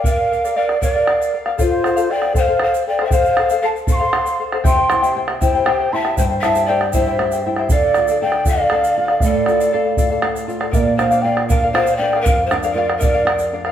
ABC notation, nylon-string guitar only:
X:1
M:6/8
L:1/8
Q:3/8=79
K:Bblyd
V:1 name="Nylon-string guitar"
z6 | z6 | z6 | C, E G E G E |
G,, E G E G E | D, F A F A F | A,, F A F A F | B,, D F D F D |
F,, D F D F D |]